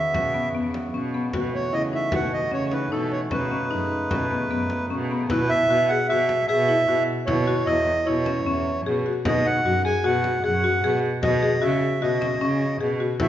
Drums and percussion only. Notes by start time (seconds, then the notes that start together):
0.14 frame drum
0.74 frame drum
1.14 frame drum
1.33 frame drum
1.73 frame drum
1.93 frame drum
2.12 frame drum
2.72 frame drum
3.12 frame drum
3.31 frame drum
3.71 frame drum
4.11 frame drum
4.30 frame drum
4.50 frame drum
4.70 frame drum
5.10 frame drum
5.30 frame drum
5.69 frame drum
6.29 frame drum
7.28 frame drum
7.68 frame drum
8.26 frame drum
9.25 frame drum
9.65 frame drum
10.24 frame drum
11.23 frame drum
11.82 frame drum
12.22 frame drum
12.42 frame drum
12.61 frame drum
13.20 frame drum